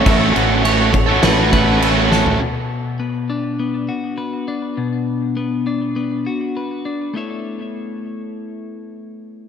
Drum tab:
CC |x-x-x-x-x-x-x---|----------------|----------------|----------------|
SD |--------o-----o-|----------------|----------------|----------------|
FT |---------------o|----------------|----------------|----------------|
BD |o-----o---o-----|----------------|----------------|----------------|